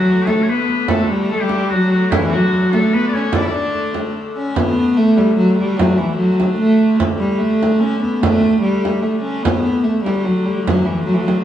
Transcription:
Already playing: hurdy-gurdy D3 A3, viola da gamba F#3, shawm F#4
0.07 frame drum
0.27 viola da gamba A3, shawm A4, frame drum
0.43 shawm C#5
0.48 viola da gamba B3, shawm B4, frame drum
0.68 frame drum
0.88 viola da gamba A3, shawm A4, frame drum
1.11 viola da gamba G3
1.30 viola da gamba A3, shawm A4, frame drum
1.41 viola da gamba G3, shawm G4
1.49 frame drum
1.70 viola da gamba F#3, shawm F#4, frame drum
1.92 shawm F#4, frame drum
2.10 viola da gamba E3, shawm E4, frame drum
2.31 viola da gamba F#3, shawm F#4
2.52 frame drum
2.72 viola da gamba A3, shawm A4, frame drum
2.93 viola da gamba B3, shawm B4, frame drum
3.08 shawm D5
3.13 viola da gamba C#4, shawm C#5, frame drum
3.33 viola da gamba D4, shawm D5, frame drum
3.42 viola da gamba E4
3.47 viola da gamba D4, shawm D5
3.74 frame drum
3.94 frame drum
4.36 viola da gamba C#4
4.55 hurdy-gurdy D3 A3, viola da gamba B3, frame drum
4.97 viola da gamba A3, frame drum
5.17 viola da gamba G3, frame drum
5.37 viola da gamba F#3, frame drum
5.58 viola da gamba G3, frame drum
5.77 viola da gamba F#3, frame drum
5.98 viola da gamba E3
6.18 viola da gamba F#3, frame drum
6.40 frame drum
6.59 viola da gamba A3, frame drum
6.80 frame drum
7.00 frame drum
7.19 viola da gamba G3
7.39 viola da gamba A3, frame drum
7.63 frame drum
7.81 viola da gamba C#4, frame drum
8.02 viola da gamba B3, frame drum
8.16 viola da gamba B3
8.21 viola da gamba A3, frame drum
8.44 frame drum
8.61 viola da gamba G3
8.85 frame drum
9.02 viola da gamba A3
9.21 viola da gamba C#4
9.43 hurdy-gurdy D3 A3, viola da gamba B3, frame drum
9.84 viola da gamba A3, frame drum
10.04 viola da gamba G3, frame drum
10.25 viola da gamba F#3, frame drum
10.45 viola da gamba G3, frame drum
10.66 viola da gamba F#3, frame drum
10.85 viola da gamba E3
11.05 viola da gamba F#3, frame drum
11.14 viola da gamba E3
11.20 viola da gamba F#3
11.28 frame drum

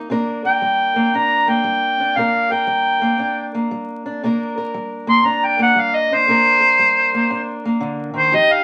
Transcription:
0.10 steel-string acoustic guitar C3 A#3 D4 A#4
0.45 steel-string acoustic guitar A#4, harmonica G5
0.62 steel-string acoustic guitar G3
0.96 steel-string acoustic guitar A#3
1.14 steel-string acoustic guitar G2 D4, harmonica A#5
1.48 steel-string acoustic guitar A#3, harmonica G5
1.64 steel-string acoustic guitar G3
2.00 steel-string acoustic guitar D4
2.17 steel-string acoustic guitar C3 A#3 D4 A#4, harmonica F5
2.52 steel-string acoustic guitar A#4, harmonica G5
2.67 steel-string acoustic guitar G3
3.01 steel-string acoustic guitar A#3
3.18 steel-string acoustic guitar G2 D4
3.55 steel-string acoustic guitar A#3
3.71 steel-string acoustic guitar G3
4.06 steel-string acoustic guitar D4
4.23 steel-string acoustic guitar C3 A#3 D4 A#4
4.58 steel-string acoustic guitar A#4
4.74 steel-string acoustic guitar G3
5.07 steel-string acoustic guitar A#3, harmonica C6
5.25 steel-string acoustic guitar G2 D4, harmonica A#5
5.45 harmonica G5
5.59 steel-string acoustic guitar A#3, harmonica F#5
5.76 steel-string acoustic guitar G3
5.80 harmonica F5
5.96 harmonica D#5
6.12 steel-string acoustic guitar D4, harmonica C5
6.28 steel-string acoustic guitar C3 A#3 D4 A#4
6.61 steel-string acoustic guitar A#4
6.79 steel-string acoustic guitar G3
7.14 steel-string acoustic guitar A#3
7.30 steel-string acoustic guitar G2 D4
7.65 steel-string acoustic guitar A#3
7.80 steel-string acoustic guitar D3
8.14 steel-string acoustic guitar D#3
8.18 harmonica C5
8.32 steel-string acoustic guitar F3 D#4 G4, harmonica D#5
8.52 harmonica F5

